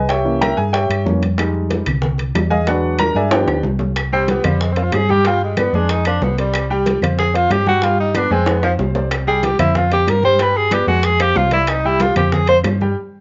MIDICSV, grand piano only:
0, 0, Header, 1, 2, 480
1, 0, Start_track
1, 0, Tempo, 321716
1, 139, Time_signature, 4, 2, 24, 8
1, 19703, End_track
2, 0, Start_track
2, 0, Title_t, "Grand piano"
2, 0, Program_c, 0, 0
2, 132, Note_on_c, 0, 79, 80
2, 146, Note_on_c, 0, 67, 65
2, 146, Note_on_c, 0, 73, 70
2, 149, Note_on_c, 0, 76, 66
2, 364, Note_on_c, 0, 52, 58
2, 377, Note_on_c, 0, 58, 52
2, 380, Note_on_c, 0, 61, 59
2, 583, Note_off_c, 0, 79, 0
2, 590, Note_off_c, 0, 67, 0
2, 590, Note_off_c, 0, 73, 0
2, 592, Note_off_c, 0, 76, 0
2, 617, Note_on_c, 0, 79, 79
2, 618, Note_on_c, 0, 70, 74
2, 618, Note_on_c, 0, 82, 98
2, 622, Note_on_c, 0, 76, 77
2, 692, Note_off_c, 0, 52, 0
2, 698, Note_off_c, 0, 58, 0
2, 700, Note_off_c, 0, 61, 0
2, 852, Note_off_c, 0, 70, 0
2, 852, Note_off_c, 0, 79, 0
2, 852, Note_off_c, 0, 82, 0
2, 853, Note_on_c, 0, 80, 95
2, 854, Note_off_c, 0, 76, 0
2, 859, Note_on_c, 0, 68, 72
2, 1090, Note_off_c, 0, 80, 0
2, 1090, Note_on_c, 0, 79, 84
2, 1093, Note_off_c, 0, 68, 0
2, 1093, Note_on_c, 0, 73, 66
2, 1093, Note_on_c, 0, 76, 65
2, 1095, Note_on_c, 0, 67, 66
2, 1543, Note_off_c, 0, 79, 0
2, 1544, Note_off_c, 0, 76, 0
2, 1545, Note_off_c, 0, 73, 0
2, 1546, Note_off_c, 0, 67, 0
2, 1566, Note_on_c, 0, 52, 52
2, 1572, Note_on_c, 0, 58, 47
2, 1580, Note_on_c, 0, 61, 59
2, 1790, Note_off_c, 0, 52, 0
2, 1793, Note_off_c, 0, 58, 0
2, 1798, Note_off_c, 0, 61, 0
2, 2052, Note_on_c, 0, 55, 57
2, 2053, Note_on_c, 0, 56, 53
2, 2072, Note_on_c, 0, 63, 64
2, 2743, Note_off_c, 0, 55, 0
2, 2744, Note_off_c, 0, 56, 0
2, 2753, Note_off_c, 0, 63, 0
2, 3737, Note_on_c, 0, 80, 99
2, 3741, Note_on_c, 0, 75, 79
2, 3742, Note_on_c, 0, 68, 78
2, 3744, Note_on_c, 0, 77, 83
2, 3975, Note_off_c, 0, 80, 0
2, 3977, Note_off_c, 0, 75, 0
2, 3978, Note_off_c, 0, 68, 0
2, 3978, Note_off_c, 0, 77, 0
2, 3986, Note_on_c, 0, 54, 57
2, 3990, Note_on_c, 0, 56, 50
2, 3994, Note_on_c, 0, 78, 84
2, 4002, Note_on_c, 0, 66, 70
2, 4003, Note_on_c, 0, 71, 70
2, 4005, Note_on_c, 0, 74, 68
2, 4007, Note_on_c, 0, 62, 64
2, 4438, Note_off_c, 0, 78, 0
2, 4442, Note_off_c, 0, 66, 0
2, 4442, Note_off_c, 0, 71, 0
2, 4444, Note_off_c, 0, 74, 0
2, 4469, Note_on_c, 0, 82, 104
2, 4473, Note_on_c, 0, 70, 82
2, 4702, Note_off_c, 0, 82, 0
2, 4704, Note_off_c, 0, 70, 0
2, 4714, Note_on_c, 0, 80, 90
2, 4719, Note_on_c, 0, 68, 77
2, 4721, Note_on_c, 0, 74, 72
2, 4722, Note_on_c, 0, 76, 73
2, 4900, Note_off_c, 0, 54, 0
2, 4902, Note_off_c, 0, 56, 0
2, 4911, Note_off_c, 0, 62, 0
2, 4942, Note_on_c, 0, 53, 55
2, 4943, Note_off_c, 0, 74, 0
2, 4944, Note_off_c, 0, 80, 0
2, 4947, Note_off_c, 0, 68, 0
2, 4949, Note_off_c, 0, 76, 0
2, 4955, Note_on_c, 0, 59, 53
2, 4962, Note_on_c, 0, 79, 82
2, 4965, Note_on_c, 0, 74, 62
2, 4967, Note_on_c, 0, 62, 62
2, 4968, Note_on_c, 0, 71, 64
2, 4969, Note_on_c, 0, 67, 64
2, 5265, Note_off_c, 0, 53, 0
2, 5271, Note_off_c, 0, 59, 0
2, 5278, Note_off_c, 0, 62, 0
2, 5403, Note_off_c, 0, 79, 0
2, 5404, Note_off_c, 0, 74, 0
2, 5406, Note_off_c, 0, 67, 0
2, 5406, Note_off_c, 0, 71, 0
2, 6154, Note_on_c, 0, 55, 90
2, 6158, Note_on_c, 0, 67, 92
2, 6168, Note_on_c, 0, 79, 85
2, 6546, Note_off_c, 0, 55, 0
2, 6548, Note_off_c, 0, 67, 0
2, 6554, Note_off_c, 0, 79, 0
2, 6631, Note_on_c, 0, 60, 80
2, 6631, Note_on_c, 0, 72, 78
2, 6637, Note_on_c, 0, 77, 75
2, 7024, Note_off_c, 0, 72, 0
2, 7025, Note_off_c, 0, 60, 0
2, 7028, Note_off_c, 0, 77, 0
2, 7118, Note_on_c, 0, 72, 76
2, 7119, Note_on_c, 0, 60, 74
2, 7125, Note_on_c, 0, 77, 80
2, 7509, Note_off_c, 0, 60, 0
2, 7509, Note_off_c, 0, 72, 0
2, 7513, Note_off_c, 0, 77, 0
2, 7604, Note_on_c, 0, 55, 87
2, 7614, Note_on_c, 0, 67, 82
2, 7614, Note_on_c, 0, 79, 83
2, 7795, Note_off_c, 0, 55, 0
2, 7801, Note_off_c, 0, 67, 0
2, 7801, Note_off_c, 0, 79, 0
2, 7856, Note_on_c, 0, 55, 83
2, 7858, Note_on_c, 0, 67, 80
2, 7865, Note_on_c, 0, 79, 85
2, 8239, Note_off_c, 0, 55, 0
2, 8241, Note_off_c, 0, 67, 0
2, 8244, Note_off_c, 0, 79, 0
2, 8325, Note_on_c, 0, 71, 70
2, 8330, Note_on_c, 0, 59, 77
2, 8334, Note_on_c, 0, 74, 76
2, 8516, Note_off_c, 0, 71, 0
2, 8519, Note_off_c, 0, 59, 0
2, 8521, Note_off_c, 0, 74, 0
2, 8576, Note_on_c, 0, 56, 81
2, 8576, Note_on_c, 0, 68, 87
2, 8582, Note_on_c, 0, 80, 85
2, 8959, Note_off_c, 0, 56, 0
2, 8959, Note_off_c, 0, 68, 0
2, 8963, Note_off_c, 0, 80, 0
2, 9051, Note_on_c, 0, 60, 77
2, 9057, Note_on_c, 0, 72, 77
2, 9057, Note_on_c, 0, 77, 78
2, 9436, Note_off_c, 0, 60, 0
2, 9440, Note_off_c, 0, 72, 0
2, 9440, Note_off_c, 0, 77, 0
2, 9524, Note_on_c, 0, 60, 74
2, 9530, Note_on_c, 0, 72, 72
2, 9541, Note_on_c, 0, 74, 76
2, 9912, Note_off_c, 0, 60, 0
2, 9916, Note_off_c, 0, 72, 0
2, 9922, Note_off_c, 0, 74, 0
2, 10001, Note_on_c, 0, 55, 95
2, 10005, Note_on_c, 0, 67, 95
2, 10010, Note_on_c, 0, 79, 90
2, 10391, Note_off_c, 0, 55, 0
2, 10393, Note_off_c, 0, 67, 0
2, 10396, Note_off_c, 0, 79, 0
2, 10490, Note_on_c, 0, 60, 77
2, 10491, Note_on_c, 0, 72, 75
2, 10496, Note_on_c, 0, 77, 76
2, 10876, Note_off_c, 0, 60, 0
2, 10877, Note_off_c, 0, 72, 0
2, 10879, Note_off_c, 0, 77, 0
2, 10950, Note_on_c, 0, 60, 73
2, 10959, Note_on_c, 0, 72, 76
2, 10961, Note_on_c, 0, 77, 74
2, 11344, Note_off_c, 0, 60, 0
2, 11349, Note_off_c, 0, 72, 0
2, 11351, Note_off_c, 0, 77, 0
2, 11439, Note_on_c, 0, 55, 82
2, 11444, Note_on_c, 0, 67, 90
2, 11446, Note_on_c, 0, 79, 85
2, 11633, Note_off_c, 0, 55, 0
2, 11636, Note_off_c, 0, 67, 0
2, 11637, Note_off_c, 0, 79, 0
2, 11681, Note_on_c, 0, 55, 82
2, 11681, Note_on_c, 0, 67, 80
2, 11691, Note_on_c, 0, 79, 80
2, 12070, Note_off_c, 0, 55, 0
2, 12070, Note_off_c, 0, 67, 0
2, 12076, Note_off_c, 0, 79, 0
2, 12178, Note_on_c, 0, 59, 77
2, 12179, Note_on_c, 0, 71, 74
2, 12182, Note_on_c, 0, 74, 69
2, 12363, Note_off_c, 0, 59, 0
2, 12364, Note_off_c, 0, 71, 0
2, 12366, Note_off_c, 0, 74, 0
2, 12401, Note_on_c, 0, 56, 91
2, 12402, Note_on_c, 0, 68, 90
2, 12411, Note_on_c, 0, 80, 87
2, 12790, Note_off_c, 0, 56, 0
2, 12791, Note_off_c, 0, 68, 0
2, 12796, Note_off_c, 0, 80, 0
2, 12875, Note_on_c, 0, 60, 74
2, 12876, Note_on_c, 0, 72, 78
2, 12885, Note_on_c, 0, 77, 80
2, 13267, Note_off_c, 0, 60, 0
2, 13267, Note_off_c, 0, 72, 0
2, 13272, Note_off_c, 0, 77, 0
2, 13369, Note_on_c, 0, 60, 73
2, 13370, Note_on_c, 0, 72, 69
2, 13376, Note_on_c, 0, 74, 70
2, 13755, Note_off_c, 0, 60, 0
2, 13755, Note_off_c, 0, 72, 0
2, 13759, Note_off_c, 0, 74, 0
2, 13832, Note_on_c, 0, 55, 88
2, 13840, Note_on_c, 0, 67, 86
2, 13846, Note_on_c, 0, 79, 91
2, 14224, Note_off_c, 0, 55, 0
2, 14229, Note_off_c, 0, 67, 0
2, 14232, Note_off_c, 0, 79, 0
2, 14309, Note_on_c, 0, 60, 74
2, 14316, Note_on_c, 0, 72, 79
2, 14318, Note_on_c, 0, 77, 77
2, 14702, Note_off_c, 0, 60, 0
2, 14706, Note_off_c, 0, 72, 0
2, 14708, Note_off_c, 0, 77, 0
2, 14795, Note_on_c, 0, 72, 75
2, 14800, Note_on_c, 0, 60, 75
2, 14804, Note_on_c, 0, 77, 70
2, 15186, Note_off_c, 0, 72, 0
2, 15189, Note_off_c, 0, 60, 0
2, 15191, Note_off_c, 0, 77, 0
2, 15274, Note_on_c, 0, 55, 78
2, 15282, Note_on_c, 0, 67, 84
2, 15286, Note_on_c, 0, 79, 81
2, 15468, Note_off_c, 0, 55, 0
2, 15472, Note_off_c, 0, 67, 0
2, 15475, Note_off_c, 0, 79, 0
2, 15520, Note_on_c, 0, 55, 87
2, 15521, Note_on_c, 0, 67, 83
2, 15522, Note_on_c, 0, 79, 82
2, 15908, Note_off_c, 0, 55, 0
2, 15909, Note_off_c, 0, 67, 0
2, 15909, Note_off_c, 0, 79, 0
2, 15992, Note_on_c, 0, 59, 79
2, 15997, Note_on_c, 0, 71, 80
2, 16001, Note_on_c, 0, 74, 72
2, 16187, Note_off_c, 0, 59, 0
2, 16189, Note_off_c, 0, 71, 0
2, 16192, Note_off_c, 0, 74, 0
2, 16231, Note_on_c, 0, 56, 81
2, 16238, Note_on_c, 0, 68, 81
2, 16241, Note_on_c, 0, 80, 86
2, 16623, Note_off_c, 0, 56, 0
2, 16626, Note_off_c, 0, 68, 0
2, 16628, Note_off_c, 0, 80, 0
2, 16710, Note_on_c, 0, 60, 77
2, 16717, Note_on_c, 0, 72, 74
2, 16718, Note_on_c, 0, 77, 80
2, 17101, Note_off_c, 0, 60, 0
2, 17106, Note_off_c, 0, 72, 0
2, 17106, Note_off_c, 0, 77, 0
2, 17182, Note_on_c, 0, 60, 78
2, 17190, Note_on_c, 0, 74, 76
2, 17191, Note_on_c, 0, 72, 78
2, 17576, Note_off_c, 0, 60, 0
2, 17581, Note_off_c, 0, 74, 0
2, 17582, Note_off_c, 0, 72, 0
2, 17680, Note_on_c, 0, 55, 87
2, 17684, Note_on_c, 0, 67, 93
2, 17689, Note_on_c, 0, 79, 87
2, 18067, Note_off_c, 0, 55, 0
2, 18069, Note_off_c, 0, 67, 0
2, 18072, Note_off_c, 0, 79, 0
2, 18153, Note_on_c, 0, 60, 76
2, 18157, Note_on_c, 0, 72, 78
2, 18162, Note_on_c, 0, 77, 76
2, 18542, Note_off_c, 0, 60, 0
2, 18545, Note_off_c, 0, 72, 0
2, 18547, Note_off_c, 0, 77, 0
2, 18633, Note_on_c, 0, 72, 81
2, 18637, Note_on_c, 0, 77, 73
2, 18638, Note_on_c, 0, 60, 76
2, 19022, Note_off_c, 0, 72, 0
2, 19025, Note_off_c, 0, 60, 0
2, 19025, Note_off_c, 0, 77, 0
2, 19121, Note_on_c, 0, 55, 80
2, 19123, Note_on_c, 0, 67, 85
2, 19125, Note_on_c, 0, 79, 80
2, 19310, Note_off_c, 0, 55, 0
2, 19311, Note_off_c, 0, 67, 0
2, 19313, Note_off_c, 0, 79, 0
2, 19703, End_track
0, 0, End_of_file